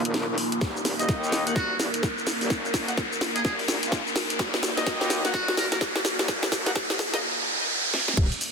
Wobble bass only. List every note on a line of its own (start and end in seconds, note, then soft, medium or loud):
0.05 0.36 F#1 loud
0.61 0.84 D#1 loud
0.85 1.07 D#1 medium
1.09 1.54 D#2 medium
1.56 1.78 D#1 medium
1.80 1.92 D#1 loud
2.41 2.49 D#1 loud
2.50 2.96 F#1 loud
3.45 3.67 D#1 loud
3.69 3.81 D#1 loud
3.83 4.04 C#2 loud
4.39 4.62 D#1 loud
4.63 4.85 D#1 medium
4.87 5.32 D#2 medium
5.34 5.56 D#1 medium
5.58 5.70 D#1 loud
6.19 6.27 D#1 loud
6.28 6.74 F#1 loud
8.17 8.30 D#1 loud